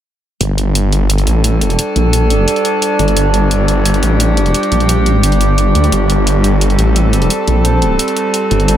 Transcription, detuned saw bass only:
0.41 G1
1.27 A1
1.96 A#1
2.99 G1
3.17 G1
4.03 A1
4.72 A#1
5.23 G1
5.75 D2
5.92 G1
6.79 A1
7.48 A#1
8.51 G1
8.68 G1

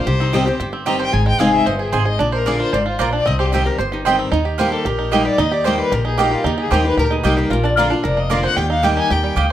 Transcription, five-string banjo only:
0.07 G4
0.20 C4
0.33 G4
0.46 G4
0.60 G4
0.73 C4
0.86 G4
0.99 C5
1.13 G#4
1.26 G#3
1.40 C4
1.53 G#4
1.66 C5
1.79 G#4
1.92 C5
2.05 G#4
2.19 D4
2.32 C5
2.46 A#4
2.60 F4
2.73 C5
2.86 F4
2.99 C5
3.13 D4
3.26 C4
3.39 C5
3.52 G4
3.65 G4
3.78 C5
3.92 G4
4.05 C5
4.19 C4
4.32 D#4
4.45 G4
4.59 C5
4.72 G4
4.85 G4
4.99 D#4
5.12 G4
5.25 G4
5.38 D#4
5.52 G4
5.64 C5
5.78 G4
5.92 G4
6.05 D#4
6.18 G4
6.31 G4
6.44 D#4
6.58 G4
6.71 C5
6.84 G4
6.97 G4
7.11 D#4
7.24 G4
7.37 G4
7.50 F4
7.64 D4
7.77 F4
7.90 D4
8.04 A#4
8.17 A#3
8.30 A#4
8.43 C5
8.57 G4
8.70 D#4
8.83 G4
8.97 D#4
9.10 G4
9.24 G3
9.37 G4

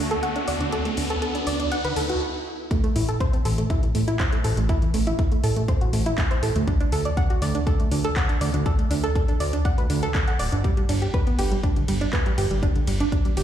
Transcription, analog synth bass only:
0.00 D2
0.48 D2
0.61 D2
0.97 D2
1.47 D2
1.85 D2
1.96 D2
2.96 A1
3.45 A1
3.83 A1
3.95 A1
4.44 A1
4.57 A1
4.94 A1
5.44 A1
5.81 A1
5.93 A1
6.43 A1
6.56 D2
6.92 D2
7.42 D2
7.80 D2
7.92 D2
8.41 D2
8.54 D2
8.91 D2
9.40 D2
9.78 D2
9.90 D2
10.39 D1
10.52 G1
10.89 G1
11.39 G1
11.76 G1
11.88 G1
12.38 G1
12.51 G1
12.87 G1
13.37 G1

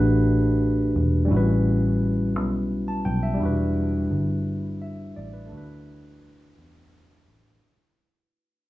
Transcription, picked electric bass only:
Already playing: A1
0.96 E1
1.31 A1
2.36 B1
3.06 B1
3.41 E1
4.11 G1
5.17 A1
5.52 D2
6.58 E2
7.28 A1

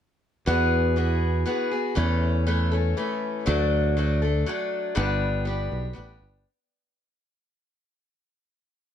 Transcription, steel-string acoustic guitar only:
0.46 E3 B3 F#4 G#4
0.96 E3 B3 F#4 G#4
1.46 E3 B3 F#4 G#4
1.71 B3 F#4 G#4
1.95 E3 A3 C#4 A4
2.47 E3 A3 C#4 A4
2.72 A3 C#4 A4
2.97 E3 A3 C#4 A4
3.46 D3 F#3 A3 D4 A4
3.97 F#3 A3 D4 A4
4.22 A3 D4 A4
4.46 F#3 A3 D4 A4
4.95 G2 D3 G3 B3 D4 G4
5.45 G3 B3 D4 G4
5.93 G3 B3 D4 G4

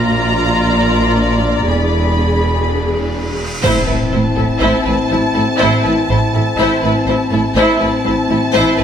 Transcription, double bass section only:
Already playing: A#1
1.66 E1
3.63 A1
3.88 A1
4.12 A1
4.37 A1
4.61 A1
4.87 A1
5.11 A1
5.36 A1
5.60 A1
5.85 A1
6.10 A1
6.33 A1
6.57 A1
6.83 A1
7.07 A1
7.33 A1
7.56 A1
7.81 A1
8.07 A1
8.31 A1
8.55 A1
8.80 A1

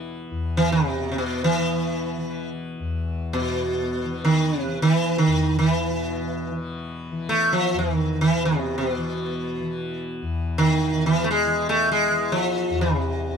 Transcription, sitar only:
0.57 E3
0.72 C3
1.12 C3
1.18 B2
1.44 E3
3.33 B2
4.25 D#3
4.62 C3
4.82 D#3
4.93 E3
5.18 D#3
5.59 D#3
5.70 E3
7.29 A3
7.53 F3
7.79 D#3
8.21 E3
8.45 C3
8.78 C3
8.89 B2
10.58 D#3
11.06 E3
11.24 A3
11.31 G#3
11.69 A3
11.92 G#3
12.32 F3
12.81 C3

